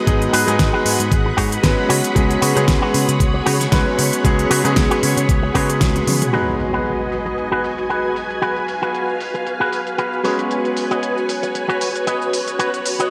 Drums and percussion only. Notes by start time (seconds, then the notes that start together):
0.07 kick, closed hi-hat
0.22 closed hi-hat
0.34 open hi-hat
0.48 cross-stick, closed hi-hat
0.59 kick, snare, closed hi-hat
0.86 open hi-hat
1.00 closed hi-hat
1.12 kick, closed hi-hat
1.38 kick, cross-stick, open hi-hat
1.52 closed hi-hat
1.64 kick, snare, closed hi-hat
1.90 open hi-hat
2.04 closed hi-hat
2.16 kick, closed hi-hat
2.31 closed hi-hat
2.42 open hi-hat
2.57 cross-stick, closed hi-hat
2.68 kick, snare, closed hi-hat
2.94 open hi-hat
3.09 closed hi-hat
3.20 kick, closed hi-hat
3.46 cross-stick, open hi-hat
3.60 snare, closed hi-hat
3.72 kick, snare, closed hi-hat
3.99 open hi-hat
4.13 closed hi-hat
4.25 kick, closed hi-hat
4.39 closed hi-hat
4.51 open hi-hat
4.65 cross-stick, closed hi-hat
4.76 kick, snare, closed hi-hat
4.91 closed hi-hat
5.03 open hi-hat
5.17 closed hi-hat
5.29 kick, closed hi-hat
5.55 kick, cross-stick, open hi-hat
5.70 closed hi-hat
5.81 kick, snare, closed hi-hat
5.96 closed hi-hat, high tom
6.07 open hi-hat, mid tom
6.22 closed hi-hat, mid tom
6.34 closed hi-hat, crash
6.48 closed hi-hat, cabasa
6.60 open hi-hat, cabasa
6.74 closed hi-hat, cabasa
6.86 closed hi-hat, cabasa
7.00 cabasa
7.12 open hi-hat, cabasa
7.26 closed hi-hat, cabasa
7.38 closed hi-hat, cabasa
7.53 cabasa
7.64 open hi-hat, cabasa
7.78 closed hi-hat, cabasa
7.90 closed hi-hat, cabasa
8.05 cabasa
8.16 open hi-hat, cabasa
8.31 closed hi-hat, cabasa
8.42 closed hi-hat, cabasa
8.56 closed hi-hat, cabasa
8.68 open hi-hat, cabasa
8.83 closed hi-hat, cabasa
8.95 closed hi-hat, cabasa
9.09 cabasa
9.20 open hi-hat, cabasa
9.35 closed hi-hat, cabasa
9.47 closed hi-hat, cabasa
9.61 cabasa
9.73 open hi-hat, cabasa
9.87 closed hi-hat, cabasa
9.98 closed hi-hat, cabasa
10.13 cabasa
10.25 open hi-hat, cabasa
10.39 closed hi-hat, cabasa
10.51 closed hi-hat, cabasa
10.65 closed hi-hat, cabasa
10.77 open hi-hat, cabasa
10.91 closed hi-hat, cabasa
11.03 closed hi-hat, cabasa
11.18 cabasa
11.29 open hi-hat, cabasa
11.43 closed hi-hat, cabasa
11.55 closed hi-hat, cabasa
11.70 cabasa
11.81 open hi-hat, cabasa
11.96 closed hi-hat, cabasa
12.07 closed hi-hat, cabasa
12.22 cabasa
12.33 open hi-hat, cabasa
12.48 closed hi-hat, cabasa
12.60 closed hi-hat, cabasa
12.74 closed hi-hat, cabasa
12.86 open hi-hat, cabasa
13.00 closed hi-hat, cabasa